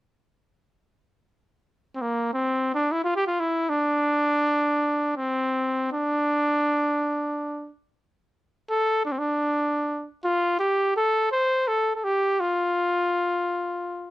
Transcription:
1.95 C4
2.01 A#3
2.34 C4
2.75 D4
2.92 E4
3.04 F4
3.16 G4
3.27 F4
3.40 E4
3.69 D4
5.17 C4
5.93 D4
8.70 A4
9.05 D4
9.12 C4
9.19 D4
10.24 F4
10.59 G4
10.97 A4
11.32 C5
11.68 A4
11.96 A4
12.04 G4
12.40 F4

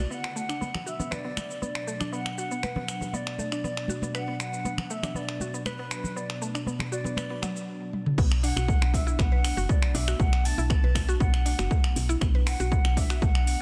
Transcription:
Already playing: D5
0.11 B2 F#3 B3 D4 F#5, shaker
0.24 finger snap
0.36 A3 F#5, shaker
0.49 D4, finger snap, shaker
0.61 B3, high conga, shaker
0.75 finger snap, low conga
0.86 F#4 E5, shaker
0.99 B3, low conga, shaker
1.11 B4 D5, finger snap, low conga, shaker
1.24 B3
1.37 finger snap, high conga, shaker
1.51 shaker
1.61 B3 D5, high conga, shaker
1.75 finger snap
1.87 A3, shaker
2.00 D4, finger snap, low conga, shaker
2.12 B3 F#5, shaker
2.26 finger snap
2.37 F#4 F#5, shaker
2.51 B3, shaker
2.63 B4, finger snap, high conga, shaker
2.76 B3, low conga
2.88 finger snap, shaker
3.01 low conga, shaker
3.13 B3 D5, high conga, shaker
3.27 finger snap
3.38 A3, high conga, shaker
3.52 D4, finger snap, shaker
3.63 B3 D5, low conga, shaker
3.77 finger snap
3.88 F#4, high conga, shaker
4.02 B3, high conga, shaker
4.14 B4 F#5, finger snap, shaker
4.28 B3
4.39 F#5, finger snap, shaker
4.54 shaker
4.65 B3, high conga, shaker
4.78 finger snap, low conga
4.90 A3 E5, shaker
5.03 D4, finger snap, low conga, shaker
5.14 B3 D5, low conga, shaker
5.29 finger snap
5.40 F#4, high conga, shaker
5.54 B3, shaker
5.65 B4, finger snap, high conga, shaker
5.79 B3
5.91 finger snap, shaker
6.04 low conga, shaker
6.16 B3 D5, shaker
6.30 finger snap
6.42 A3, shaker
6.55 D4, finger snap, shaker
6.66 B3, high conga, shaker
6.79 finger snap, low conga
6.92 F#4 D5, shaker
7.04 B3, low conga, shaker
7.16 B4, finger snap, high conga, shaker
7.30 B3
7.42 F#3, finger snap, high conga, shaker
7.56 shaker
7.93 high tom
8.06 mid tom
8.18 B1 A3 B3 D4, kick, crash, shaker
8.32 finger snap
8.43 D4 F#5, open hi-hat, shaker
8.56 B1 F#4, finger snap, shaker
8.68 A3, kick, shaker
8.81 B1, finger snap
8.94 E5, kick, open hi-hat, shaker
9.07 E4, shaker
9.19 B1 B3 F#5, finger snap, kick, shaker
9.32 B4
9.45 finger snap, open hi-hat, shaker
9.57 F#1 F#4, shaker
9.69 B3 D5, kick, shaker
9.82 finger snap
9.94 B1 D4 E5, open hi-hat, shaker
10.08 F#4, finger snap, shaker
10.19 B1 A3 F#5, kick, shaker
10.33 finger snap
10.45 A5, open hi-hat, shaker
10.58 B1 E4, shaker
10.70 B3 A5, finger snap, kick, shaker
10.83 B1 B4
10.95 finger snap, kick, open hi-hat, shaker
11.09 F#4, shaker
11.20 B1 B3 F#5, kick, shaker
11.34 finger snap
11.46 D4, open hi-hat, shaker
11.59 F#1 F#4, finger snap, shaker
11.71 A3, kick, shaker
11.84 finger snap
11.96 B1, open hi-hat, shaker
12.09 E4, shaker
12.21 B1 B3, finger snap, kick, shaker
12.35 B4
12.47 F#5, finger snap, open hi-hat, shaker
12.60 B1 F#4, shaker
12.72 B3, kick, shaker
12.85 B1, finger snap
12.97 D4 E5, kick, open hi-hat, shaker
13.10 F#4, finger snap, shaker
13.22 B1 A3 F#5, kick, shaker
13.35 finger snap
13.47 open hi-hat, shaker

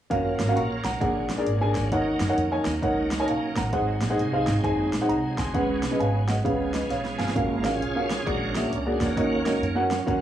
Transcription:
0.10 F#1 F#3 A#3 C#4 F4 F#4 A#4 F5, kick, closed hi-hat
0.39 G#1, snare, closed hi-hat
0.48 C#4 F#4 A#4 F5
0.56 A#1 A#5 C#6, closed hi-hat
0.84 B1 F#5 A#5, snare, closed hi-hat
1.00 A#1 A#2 F#3 D4 G#4 A#4 F#5, kick, closed hi-hat
1.30 snare, closed hi-hat
1.38 D4 G#4 A#4 D5
1.46 G#1, closed hi-hat
1.61 D4 G#4 A#4 G#5
1.75 kick, snare, closed hi-hat
1.92 D#2 D#3 A#3 C#4 D#4 A#4 C#5 F#5, kick, closed hi-hat
2.20 F#2, snare, closed hi-hat
2.28 D#4 A#4 C#5 F#5
2.37 F2, closed hi-hat
2.51 D#4 A#4 C#5 G#5
2.65 D#2, snare, closed hi-hat
2.82 C#2 D#4 A#4 C#5 F#5, kick, closed hi-hat
3.11 snare, closed hi-hat
3.19 D#4 A#4 C#5 G#5
3.28 B1 F5 G#5, closed hi-hat
3.56 A1 F#5 A#5, kick, snare, closed hi-hat
3.73 G#1 G#2 G#3 C4 D#4 G#4 C5 F#5, kick, closed hi-hat
4.01 A#1, snare, closed hi-hat
4.10 D#4 G#4 C5 F#5
4.18 C2, closed hi-hat
4.33 D#4 G#4 C5 F5
4.47 G#1, snare, closed hi-hat
4.63 F#1 D#4 G#4 C5 G#5, kick, closed hi-hat
4.92 A#1, snare, closed hi-hat
5.01 D#4 G#4 C5 F#5
5.09 C2 F#5 A#5, closed hi-hat
5.38 D2 G#5 C6, kick, snare, closed hi-hat
5.53 C#2 C#3 B3 C#4 G#4 B4 F#5, kick, closed hi-hat
5.83 B1, snare, closed hi-hat
5.91 C#4 G#4 B4 D#5
6.00 G#1 F5 G#5, closed hi-hat
6.28 D#5 F#5, snare, closed hi-hat
6.44 C#2 C#3 F3 C#4 G#4 B4 F5, kick, closed hi-hat
6.73 B4 D#5, snare, closed hi-hat
6.90 B1 C#5 F5, snare, closed hi-hat
7.05 snare
7.18 G1 A#3 C#4 F4 F5 G#5, snare, closed hi-hat
7.28 snare
7.35 F#1 G#3 A#3 C#4 F4 F#4 A#4 F5, kick, closed hi-hat
7.64 G#1 C#4 F4 F#4 G#4 A#4 F5, snare, closed hi-hat
7.81 B1, closed hi-hat
7.96 C#4 F#4 A#4 F5
8.10 snare, closed hi-hat
8.25 A#1 A#2 G#3 A#3 C#4 D4 F#4 G#4 A#4 D5, kick, closed hi-hat
8.55 A#3 F#4 G#4 E5, snare, closed hi-hat
8.64 A#4
8.72 C#2, closed hi-hat
8.86 A#3 F#4 G#4 D5
8.92 G#4
9.00 E2 A#3 C#4 F#4, kick, snare, closed hi-hat
9.16 D#2 D#3 C#4 F#4 A#4 D#5, kick, closed hi-hat
9.45 C#2 C#4 F#4 A#4 D#5, snare, closed hi-hat
9.62 F#2, closed hi-hat
9.75 C#4 F#4 A#4 F#5
9.90 F#3 C#4 F4, snare, closed hi-hat
10.06 D#2 C#4 F#4 A#4 F#5, kick, closed hi-hat

